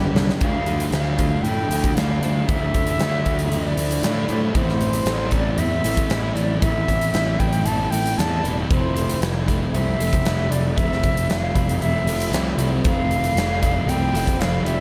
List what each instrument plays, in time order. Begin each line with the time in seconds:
Already playing: clean electric guitar G2 D3 G3 B3 D4 G4, distorted electric guitar G2 D3 G3, twelve-string acoustic guitar D4 G4, analog synth pad G4 B4 D5 B5, flute G5
0.14 picked electric bass C2, distorted electric guitar D3 G3, twelve-string acoustic guitar D4, snare
0.29 snare
0.40 picked electric bass D2, distorted electric guitar D3 A3 D4, clean electric guitar D3 F3 A3 D4, flute F5, kick, closed hi-hat
0.44 clean electric guitar E4
0.66 twelve-string acoustic guitar A3, closed hi-hat
0.80 closed hi-hat
0.91 picked electric bass D2, distorted electric guitar D3 A3 D4, twelve-string acoustic guitar F3, flute F5, snare, closed hi-hat
1.18 clean electric guitar A3 D4 E4, kick, closed hi-hat
1.43 picked electric bass A2, clean electric guitar F3 A3, flute G5, closed hi-hat
1.47 clean electric guitar D4 E4
1.69 picked electric bass D2, distorted electric guitar D3 A3 D4, clean electric guitar D4 E4, closed hi-hat
1.74 clean electric guitar A3
1.84 kick, closed hi-hat
1.95 picked electric bass D2, distorted electric guitar D3 A3 D4, clean electric guitar F3 A3 D4, flute F5, snare, closed hi-hat
1.99 clean electric guitar E4
2.21 picked electric bass D2, twelve-string acoustic guitar F3, clean electric guitar A3 D4 E4, distorted electric guitar D4, closed hi-hat
2.26 distorted electric guitar A3
2.47 picked electric bass D2, clean electric guitar D3 F3 A3 D4 E4, distorted electric guitar D3 A3, flute E5, kick, closed hi-hat
2.52 distorted electric guitar D4
2.74 picked electric bass D2, twelve-string acoustic guitar A3, kick, closed hi-hat
2.87 closed hi-hat
2.98 picked electric bass D2, distorted electric guitar D3 A3, twelve-string acoustic guitar F3, snare, closed hi-hat
3.03 distorted electric guitar D4
3.25 picked electric bass D2, clean electric guitar A3 D4 E4, kick, closed hi-hat
3.39 closed hi-hat
3.51 picked electric bass D2, clean electric guitar F3 A3 D4 E4, flute D5, closed hi-hat
3.76 picked electric bass D2, distorted electric guitar D3 A3 D4, clean electric guitar D4 E4, closed hi-hat
3.81 clean electric guitar A3
3.91 closed hi-hat
4.02 picked electric bass A2, distorted electric guitar D3 A3 D4, clean electric guitar F3 A3 D4 E4, snare, closed hi-hat
4.28 picked electric bass A2, twelve-string acoustic guitar F3, distorted electric guitar A3 D4, clean electric guitar A3 D4 E4, closed hi-hat
4.54 picked electric bass A1, clean electric guitar A2 E3 B3 C4 E4, distorted electric guitar A2 E3 A3, flute C5, kick, closed hi-hat
4.69 snare
4.81 closed hi-hat
4.93 closed hi-hat
5.06 picked electric bass A1, distorted electric guitar A2 E3 A3, twelve-string acoustic guitar E3, snare, closed hi-hat
5.31 clean electric guitar B3 C4 E4, flute D5, kick, closed hi-hat
5.57 picked electric bass E2, clean electric guitar E3 B3 C4 E4, flute E5, closed hi-hat
5.83 picked electric bass A1, distorted electric guitar A2 E3 A3, clean electric guitar B3 C4 E4, closed hi-hat
5.97 kick, closed hi-hat
6.09 picked electric bass A1, distorted electric guitar A2 E3 A3, clean electric guitar E3 B3 C4 E4, snare, closed hi-hat
6.35 picked electric bass A1, twelve-string acoustic guitar E3, distorted electric guitar E3 A3, clean electric guitar B3 E4, flute D5, closed hi-hat
6.39 clean electric guitar C4
6.61 picked electric bass A1, distorted electric guitar A2 E3 A3, clean electric guitar A2 E3 B3 C4, flute E5, kick, closed hi-hat
6.65 clean electric guitar E4
6.88 picked electric bass A1, kick, closed hi-hat
7.01 closed hi-hat
7.13 picked electric bass A1, distorted electric guitar A2 E3 A3, twelve-string acoustic guitar E3, snare, closed hi-hat
7.39 picked electric bass A1, clean electric guitar B3 C4 E4, flute G5, kick, closed hi-hat
7.53 closed hi-hat
7.65 picked electric bass A1, clean electric guitar E3 B3 C4 E4, flute A5, closed hi-hat
7.91 picked electric bass A1, distorted electric guitar A2 E3 A3, clean electric guitar B3 E4, flute G5, closed hi-hat
7.95 clean electric guitar C4
8.06 closed hi-hat
8.17 picked electric bass E2, distorted electric guitar A2 E3 A3, clean electric guitar E3 B3 C4 E4, flute A5, snare, closed hi-hat
8.43 picked electric bass E1, twelve-string acoustic guitar E3, distorted electric guitar E3 A3, clean electric guitar B3 C4 E4, closed hi-hat
8.69 picked electric bass F1, distorted electric guitar F2 C3 F3, clean electric guitar F3 A3 C4 E4, flute C5, kick, closed hi-hat
8.96 twelve-string acoustic guitar A3, closed hi-hat
9.09 closed hi-hat
9.21 picked electric bass F1, distorted electric guitar F2 C3 F3, snare, closed hi-hat
9.47 clean electric guitar A3 C4 E4, kick, closed hi-hat
9.72 picked electric bass C2, clean electric guitar F3 A3 C4, flute E5, closed hi-hat
9.77 clean electric guitar E4
9.99 picked electric bass F1, distorted electric guitar F2 C3 F3, clean electric guitar A3 C4 E4, closed hi-hat
10.13 kick, closed hi-hat
10.24 picked electric bass F1, distorted electric guitar F2 C3 F3, clean electric guitar F3 A3 C4 E4, snare, closed hi-hat
10.50 picked electric bass F1, distorted electric guitar C3 F3, clean electric guitar A3 C4 E4, flute D5, closed hi-hat
10.76 picked electric bass F1, distorted electric guitar F2 C3 F3, clean electric guitar F3 A3 C4 E4, flute E5, kick, closed hi-hat
10.92 snare
11.03 picked electric bass F1, twelve-string acoustic guitar A3, kick, closed hi-hat
11.17 closed hi-hat
11.28 picked electric bass F1, distorted electric guitar F2 C3 F3, flute E5, snare, closed hi-hat
11.39 flute F5
11.55 picked electric bass F1, clean electric guitar A3 C4 E4, kick, closed hi-hat
11.69 closed hi-hat
11.80 picked electric bass F1, clean electric guitar F3 A3 C4, flute E5, closed hi-hat
11.84 clean electric guitar E4
12.05 picked electric bass F1, distorted electric guitar F2 C3 F3, clean electric guitar C4 E4, closed hi-hat
12.10 clean electric guitar A3
12.20 closed hi-hat
12.30 picked electric bass C2, distorted electric guitar F2 C3, clean electric guitar F3 A3, snare, closed hi-hat
12.35 distorted electric guitar F3, clean electric guitar C4 E4
12.58 picked electric bass C2, distorted electric guitar C3 F3, clean electric guitar C4 E4, closed hi-hat
12.63 clean electric guitar A3
12.84 picked electric bass F1, distorted electric guitar F2 C3 F3, clean electric guitar F3 A3 C4 E4, flute F5, kick, closed hi-hat
13.11 twelve-string acoustic guitar A3, closed hi-hat
13.24 closed hi-hat
13.35 picked electric bass F1, distorted electric guitar F2 C3 F3, snare, closed hi-hat
13.62 clean electric guitar A3 C4 E4, kick, closed hi-hat
13.87 picked electric bass C2, clean electric guitar F3 A3 C4, flute G5, closed hi-hat
13.91 clean electric guitar E4
14.13 picked electric bass F1, distorted electric guitar F2 C3 F3, clean electric guitar A3 C4 E4, closed hi-hat
14.27 kick, closed hi-hat
14.38 picked electric bass F1, distorted electric guitar F2 C3 F3, clean electric guitar F3 A3 C4, flute F5, snare, closed hi-hat
14.43 clean electric guitar E4
14.65 picked electric bass F1, distorted electric guitar C3 F3, clean electric guitar A3 C4 E4, flute E5, closed hi-hat